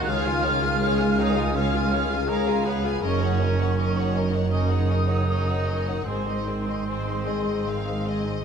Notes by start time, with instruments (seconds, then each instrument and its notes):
Already playing: harp D#3 D#4 F4 A#4 D#5, french horn section D#3, cor anglais F#4
0.04 double bass section C#2, harp C#3, french horn section G#4, violin section F5
0.08 cello section C#2, cor anglais F4, viola section G#4, violin section C#5, flute section F6
0.23 viola section F4, violin section F5 G#5
0.33 harp G#3
0.43 viola section G#4, violin section C#5 F5
0.58 harp G#4, violin section G#5
0.63 viola section F4, violin section F5
0.80 viola section G#4, harp C#5, violin section C#5 F5
0.99 viola section F4, violin section F5 G#5
1.07 harp G#4
1.17 cor anglais D#4, viola section G#4, violin section C#5 F5
1.21 flute section D#6
1.32 harp C#5, violin section F5 G#5
1.38 viola section F4
1.55 harp C#4, cor anglais F4, viola section G#4, violin section C#5 F5, flute section F6
1.72 viola section F4, violin section F5 G#5
1.81 harp G#3
1.91 viola section G#4, violin section C#5 F5
2.05 harp G#4
2.09 viola section F4, violin section F5 G#5
2.28 viola section G#4, cor anglais A#4, violin section C#5 F5, harp C#5, flute section A#5
2.48 viola section F4, violin section F5 G#5
2.54 harp G#4
2.65 cor anglais B3, viola section G#4, violin section C#5 F5, flute section B5
2.79 harp C#5
2.84 viola section F4, violin section F5 G#5
3.02 double bass section F#1, cello section F#2, harp F#2, french horn section D#3 A#4, cor anglais C#4, viola section C#4, violin section A#4 D#5, flute section C#6
3.21 viola section D#4, violin section C#5 F#5
3.29 harp A#3
3.40 viola section C#4, violin section A#4 D#5
3.54 harp F#4
3.58 viola section D#4, violin section C#5 F#5
3.77 viola section C#4, violin section A#4 D#5, harp D#5
3.95 viola section D#4, violin section C#5 F#5
4.03 harp A#4
4.14 viola section C#4, violin section A#4 D#5
4.27 harp D#5
4.32 viola section D#4, violin section C#5 F#5
4.50 harp C#3, viola section C#4, cor anglais D#4, violin section D#5, flute section D#6
4.55 violin section A#4
4.69 viola section D#4, violin section C#5 F#5
4.77 harp A#3
4.88 viola section C#4, violin section A#4 D#5
5.03 harp F#4
5.08 viola section D#4, violin section C#5 F#5
5.27 viola section C#4, violin section A#4 D#5, harp D#5
5.47 viola section D#4, violin section C#5 F#5
5.54 harp A#4
5.66 viola section C#4, violin section A#4 D#5
5.81 harp D#5
5.86 viola section D#4, violin section C#5 F#5
6.05 double bass section G#1, cello section G#2, harp G#2, cor anglais C4, viola section C4, violin section G#4 C5, flute section C6
6.09 french horn section G#4
6.26 viola section D#4, violin section C5 D#5
6.34 harp G#3
6.46 viola section C4, violin section G#4 C5
6.60 harp D#4
6.67 viola section D#4, violin section C5 D#5
6.86 viola section C4, violin section G#4 C5, harp D#5
7.07 viola section D#4, violin section C5
7.13 harp G#4
7.27 viola section C4, violin section G#4 D#5
7.40 harp D#5
7.47 viola section D#4, violin section C5
7.66 harp D#3, viola section C4, violin section G#4 F5
7.86 viola section D#4, violin section C5
7.93 harp G#3
8.05 viola section C4, violin section D#5
8.09 violin section G#4
8.19 harp D#4
8.26 viola section D#4, violin section C5